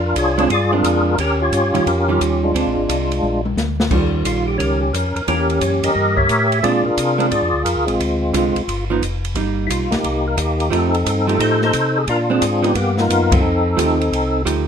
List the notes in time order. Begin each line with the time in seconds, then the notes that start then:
Already playing: F2 D4 F4
0.06 A#4
0.15 C2 F4 G#4 C#5, kick, hi-hat pedal, ride
0.38 G#3 C4 D4, ride
0.50 G2 F4 G#4 D5, kick, ride
0.72 G#3 C4 D4 F4 A#4
0.84 F2, kick, hi-hat pedal, ride
1.18 D#2 C#4 G4 A#4, kick, ride
1.42 F4 G4 C#5
1.52 G2, kick, hi-hat pedal, ride
1.74 G2 D#3 G3 C#4 F4 C#5, ride
1.86 F2 C#4 G4 A#4, kick, ride
2.08 D#3 G3 C#4 F4
2.20 D#2 G4, kick, hi-hat pedal, ride
2.44 G#3 D4 F4
2.54 D2 G#3 C4 D4, kick, ride
2.66 A#1
2.76 G#1
2.89 C2, kick, hi-hat pedal, ride
3.12 ride
3.23 A#1, high tom
3.45 high tom
3.56 D2, snare, hi-hat pedal
3.80 snare
3.90 D#2 D#3 G3 C#4 F4, kick, crash
4.25 A#1 F4, kick, hi-hat pedal, ride
4.48 G4
4.58 C#2 C#4 G4 A#4, kick, ride
4.81 G4
4.93 F2 A#4, kick, hi-hat pedal, ride
5.15 F2 A#4, ride
5.27 E2 E3 A#3 C#4 G4 A#4, kick, ride
5.50 ride
5.61 F#2 C#5, kick, hi-hat pedal, ride
5.83 F#2 G4 A#4 D#5, ride
5.95 G2, kick
6.16 G4 C#5 E5, kick
6.29 A2, hi-hat pedal, ride
6.52 ride
6.63 A#2 G#3 C4 D4 F4 G#4 D5, kick, ride
6.85 A#2 D4 F4 A#4
6.97 C3, kick, hi-hat pedal, ride
7.18 G#3 C4 D4, ride
7.31 G#2 F4 G#4 D5, kick, ride
7.42 F2
7.53 D2
7.65 F2 A#4, kick, hi-hat pedal, ride
7.76 D2
7.86 A#1 G#3 C4 F4, ride
8.00 D2, kick, ride
8.33 C2 D3 G#3 C4 F4, kick, hi-hat pedal, ride
8.55 C2, ride
8.68 G1, kick, ride
8.90 F3 B3 D#4
9.02 F1, kick, hi-hat pedal, ride
9.25 ride
9.35 G1 G3 A#3 D#4, kick, ride
9.67 B1 E4 F4, kick, hi-hat pedal, ride
9.91 B1 A#3 D#4 G4, snare, ride
10.04 C2, kick, ride
10.27 A#4
10.37 D#2 A#3 D#4 G4, kick, hi-hat pedal, ride
10.60 ride
10.70 F2 F3 A3 C4 D#4 G4 A4, kick, ride
10.94 ride
11.05 G2 A4, kick, hi-hat pedal, ride
11.27 F3 A3 D#4 G4 A4, ride
11.39 A2 D#4 A4 C5, kick, ride
11.62 D#4 A4 C5, snare
11.73 C3, kick, hi-hat pedal, ride
11.98 G#4
12.07 A#2 D4 F4 A#4, kick, ride
12.30 G#3 C4 D4 G#4
12.41 G#2, kick, hi-hat pedal, ride
12.63 F3 B3 D#4 G4, ride
12.75 G2 A#3 B3 G4, kick, ride
12.97 D#4 F4, snare
13.02 A#4
13.10 F#2, kick, hi-hat pedal, ride
13.32 C4 D#4 A4, kick, ride
13.43 F2
13.77 D#2 F3 A3 D#4 G4, kick, hi-hat pedal, ride
14.01 ride
14.12 C2, kick, ride
14.45 D2 F3 A3 D#4 G4, kick, hi-hat pedal, ride